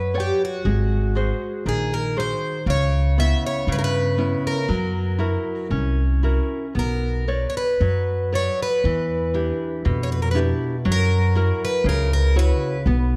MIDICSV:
0, 0, Header, 1, 4, 480
1, 0, Start_track
1, 0, Tempo, 1011804
1, 310, Time_signature, 2, 2, 24, 8
1, 2712, Tempo, 1038062
1, 4632, Tempo, 1001669
1, 6211, End_track
2, 0, Start_track
2, 0, Title_t, "Twelve-string acoustic guitar"
2, 0, Program_c, 0, 25
2, 0, Note_on_c, 0, 71, 58
2, 93, Note_off_c, 0, 71, 0
2, 95, Note_on_c, 0, 67, 60
2, 206, Note_off_c, 0, 67, 0
2, 212, Note_on_c, 0, 66, 62
2, 798, Note_off_c, 0, 66, 0
2, 800, Note_on_c, 0, 68, 63
2, 918, Note_off_c, 0, 68, 0
2, 919, Note_on_c, 0, 70, 63
2, 1037, Note_off_c, 0, 70, 0
2, 1042, Note_on_c, 0, 72, 70
2, 1258, Note_off_c, 0, 72, 0
2, 1281, Note_on_c, 0, 73, 76
2, 1516, Note_off_c, 0, 73, 0
2, 1518, Note_on_c, 0, 76, 82
2, 1635, Note_off_c, 0, 76, 0
2, 1644, Note_on_c, 0, 73, 71
2, 1758, Note_off_c, 0, 73, 0
2, 1766, Note_on_c, 0, 71, 74
2, 1791, Note_off_c, 0, 71, 0
2, 1796, Note_on_c, 0, 70, 60
2, 1820, Note_off_c, 0, 70, 0
2, 1822, Note_on_c, 0, 71, 73
2, 2119, Note_off_c, 0, 71, 0
2, 2120, Note_on_c, 0, 70, 68
2, 2939, Note_off_c, 0, 70, 0
2, 3208, Note_on_c, 0, 70, 63
2, 3533, Note_off_c, 0, 70, 0
2, 3535, Note_on_c, 0, 73, 53
2, 3564, Note_off_c, 0, 73, 0
2, 3570, Note_on_c, 0, 71, 64
2, 3907, Note_off_c, 0, 71, 0
2, 3931, Note_on_c, 0, 73, 75
2, 4048, Note_off_c, 0, 73, 0
2, 4057, Note_on_c, 0, 71, 69
2, 4685, Note_off_c, 0, 71, 0
2, 4711, Note_on_c, 0, 73, 60
2, 4747, Note_off_c, 0, 73, 0
2, 4753, Note_on_c, 0, 71, 57
2, 4790, Note_off_c, 0, 71, 0
2, 4802, Note_on_c, 0, 70, 60
2, 4836, Note_off_c, 0, 70, 0
2, 4844, Note_on_c, 0, 71, 62
2, 4879, Note_off_c, 0, 71, 0
2, 5134, Note_on_c, 0, 70, 88
2, 5482, Note_off_c, 0, 70, 0
2, 5484, Note_on_c, 0, 71, 79
2, 5598, Note_off_c, 0, 71, 0
2, 5600, Note_on_c, 0, 70, 74
2, 5712, Note_off_c, 0, 70, 0
2, 5718, Note_on_c, 0, 70, 80
2, 5824, Note_off_c, 0, 70, 0
2, 5840, Note_on_c, 0, 71, 86
2, 6211, Note_off_c, 0, 71, 0
2, 6211, End_track
3, 0, Start_track
3, 0, Title_t, "Nylon-string guitar"
3, 0, Program_c, 1, 24
3, 0, Note_on_c, 1, 54, 45
3, 67, Note_on_c, 1, 71, 37
3, 69, Note_on_c, 1, 73, 33
3, 71, Note_on_c, 1, 74, 39
3, 259, Note_off_c, 1, 71, 0
3, 261, Note_off_c, 1, 73, 0
3, 262, Note_off_c, 1, 74, 0
3, 295, Note_off_c, 1, 54, 0
3, 308, Note_on_c, 1, 56, 51
3, 546, Note_on_c, 1, 66, 38
3, 550, Note_on_c, 1, 68, 34
3, 553, Note_on_c, 1, 72, 43
3, 773, Note_off_c, 1, 56, 0
3, 788, Note_on_c, 1, 51, 51
3, 931, Note_off_c, 1, 66, 0
3, 934, Note_off_c, 1, 68, 0
3, 934, Note_off_c, 1, 72, 0
3, 1027, Note_on_c, 1, 66, 38
3, 1029, Note_on_c, 1, 68, 36
3, 1032, Note_on_c, 1, 72, 43
3, 1219, Note_off_c, 1, 66, 0
3, 1220, Note_off_c, 1, 68, 0
3, 1221, Note_off_c, 1, 72, 0
3, 1252, Note_off_c, 1, 51, 0
3, 1266, Note_on_c, 1, 49, 60
3, 1508, Note_on_c, 1, 59, 39
3, 1509, Note_on_c, 1, 61, 37
3, 1510, Note_on_c, 1, 64, 45
3, 1731, Note_off_c, 1, 49, 0
3, 1746, Note_on_c, 1, 49, 55
3, 1891, Note_off_c, 1, 59, 0
3, 1892, Note_off_c, 1, 61, 0
3, 1893, Note_off_c, 1, 64, 0
3, 1981, Note_on_c, 1, 59, 38
3, 1983, Note_on_c, 1, 61, 39
3, 1986, Note_on_c, 1, 64, 45
3, 2174, Note_off_c, 1, 59, 0
3, 2176, Note_off_c, 1, 61, 0
3, 2177, Note_off_c, 1, 64, 0
3, 2211, Note_off_c, 1, 49, 0
3, 2222, Note_on_c, 1, 54, 58
3, 2460, Note_on_c, 1, 64, 38
3, 2463, Note_on_c, 1, 66, 34
3, 2466, Note_on_c, 1, 70, 43
3, 2693, Note_off_c, 1, 54, 0
3, 2708, Note_on_c, 1, 61, 46
3, 2852, Note_off_c, 1, 64, 0
3, 2853, Note_off_c, 1, 66, 0
3, 2854, Note_off_c, 1, 70, 0
3, 2949, Note_on_c, 1, 64, 37
3, 2951, Note_on_c, 1, 66, 33
3, 2955, Note_on_c, 1, 70, 43
3, 3144, Note_off_c, 1, 64, 0
3, 3145, Note_off_c, 1, 66, 0
3, 3147, Note_off_c, 1, 70, 0
3, 3178, Note_off_c, 1, 61, 0
3, 3189, Note_on_c, 1, 59, 50
3, 3432, Note_off_c, 1, 59, 0
3, 3434, Note_on_c, 1, 71, 38
3, 3436, Note_on_c, 1, 73, 35
3, 3437, Note_on_c, 1, 74, 42
3, 3679, Note_on_c, 1, 54, 50
3, 3821, Note_off_c, 1, 71, 0
3, 3823, Note_off_c, 1, 73, 0
3, 3823, Note_off_c, 1, 74, 0
3, 3918, Note_on_c, 1, 71, 38
3, 3921, Note_on_c, 1, 73, 36
3, 3923, Note_on_c, 1, 74, 41
3, 4109, Note_off_c, 1, 71, 0
3, 4111, Note_off_c, 1, 73, 0
3, 4112, Note_off_c, 1, 74, 0
3, 4143, Note_off_c, 1, 54, 0
3, 4161, Note_on_c, 1, 52, 56
3, 4388, Note_on_c, 1, 62, 40
3, 4390, Note_on_c, 1, 64, 37
3, 4390, Note_on_c, 1, 67, 44
3, 4616, Note_off_c, 1, 52, 0
3, 4623, Note_on_c, 1, 47, 55
3, 4769, Note_off_c, 1, 62, 0
3, 4770, Note_off_c, 1, 64, 0
3, 4771, Note_off_c, 1, 67, 0
3, 4860, Note_on_c, 1, 62, 43
3, 4863, Note_on_c, 1, 64, 38
3, 4866, Note_on_c, 1, 67, 47
3, 5055, Note_off_c, 1, 62, 0
3, 5056, Note_off_c, 1, 64, 0
3, 5059, Note_off_c, 1, 67, 0
3, 5091, Note_off_c, 1, 47, 0
3, 5103, Note_on_c, 1, 54, 63
3, 5343, Note_on_c, 1, 64, 45
3, 5345, Note_on_c, 1, 66, 39
3, 5348, Note_on_c, 1, 70, 50
3, 5568, Note_off_c, 1, 54, 0
3, 5584, Note_on_c, 1, 49, 60
3, 5728, Note_off_c, 1, 64, 0
3, 5729, Note_off_c, 1, 66, 0
3, 5730, Note_off_c, 1, 70, 0
3, 5824, Note_on_c, 1, 64, 46
3, 5827, Note_on_c, 1, 66, 43
3, 5828, Note_on_c, 1, 73, 51
3, 6018, Note_off_c, 1, 64, 0
3, 6018, Note_off_c, 1, 66, 0
3, 6020, Note_off_c, 1, 73, 0
3, 6051, Note_off_c, 1, 49, 0
3, 6069, Note_on_c, 1, 59, 66
3, 6211, Note_off_c, 1, 59, 0
3, 6211, End_track
4, 0, Start_track
4, 0, Title_t, "Upright bass"
4, 0, Program_c, 2, 32
4, 0, Note_on_c, 2, 42, 61
4, 142, Note_off_c, 2, 42, 0
4, 308, Note_on_c, 2, 32, 65
4, 620, Note_off_c, 2, 32, 0
4, 786, Note_on_c, 2, 34, 63
4, 1098, Note_off_c, 2, 34, 0
4, 1263, Note_on_c, 2, 37, 70
4, 1576, Note_off_c, 2, 37, 0
4, 1741, Note_on_c, 2, 43, 68
4, 2054, Note_off_c, 2, 43, 0
4, 2224, Note_on_c, 2, 42, 63
4, 2539, Note_off_c, 2, 42, 0
4, 2706, Note_on_c, 2, 36, 66
4, 3022, Note_off_c, 2, 36, 0
4, 3192, Note_on_c, 2, 35, 61
4, 3508, Note_off_c, 2, 35, 0
4, 3677, Note_on_c, 2, 42, 69
4, 3989, Note_off_c, 2, 42, 0
4, 4156, Note_on_c, 2, 40, 72
4, 4463, Note_off_c, 2, 40, 0
4, 4625, Note_on_c, 2, 41, 73
4, 4938, Note_off_c, 2, 41, 0
4, 5104, Note_on_c, 2, 42, 77
4, 5415, Note_off_c, 2, 42, 0
4, 5578, Note_on_c, 2, 37, 76
4, 5893, Note_off_c, 2, 37, 0
4, 6064, Note_on_c, 2, 35, 79
4, 6211, Note_off_c, 2, 35, 0
4, 6211, End_track
0, 0, End_of_file